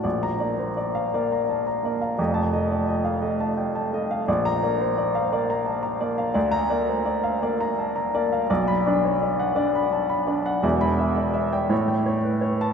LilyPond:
<<
  \new Staff \with { instrumentName = "Upright piano" } { \time 6/8 \key bes \major \tempo 4. = 56 << { r16 bes''8 r2 r16 | r16 a''8 r2 r16 | r16 bes''8 r2 r16 | r16 bes''8 r2 r16 |
\key b \minor r16 b''8 r2 r16 | r16 b''8 r2 a''16 | } \\ { d''8 d''16 c''16 d''16 f''16 d''16 bes''16 a''16 bes''16 d''16 f''16 | ees''8 ees''16 d''16 ees''16 f''16 ees''16 a''16 g''16 a''16 ees''16 f''16 | d''8 d''16 c''16 d''16 f''16 d''16 bes''16 a''16 bes''16 d''16 f''16 | d''8 d''16 c''16 d''16 f''16 d''16 bes''16 a''16 bes''16 d''16 f''16 |
d''8 d''16 cis''16 d''16 fis''16 d''16 b''16 a''16 b''16 d''16 fis''16 | e''8 e''16 d''16 e''16 g''16 cis''16 g''16 cis''16 b'16 cis''8 | } >> }
  \new Staff \with { instrumentName = "Upright piano" } { \time 6/8 \key bes \major bes,,8 bes8 r8 bes8 r8 bes8 | <f,, f,>8 a8 r8 a8 r8 a8 | bes,,8 bes8 r8 bes8 r8 bes8 | d,8 bes8 r8 bes8 r8 bes8 |
\key b \minor b,,8 d'8 r8 d'8 r8 d'8 | <e,, e,>4. a,4. | }
>>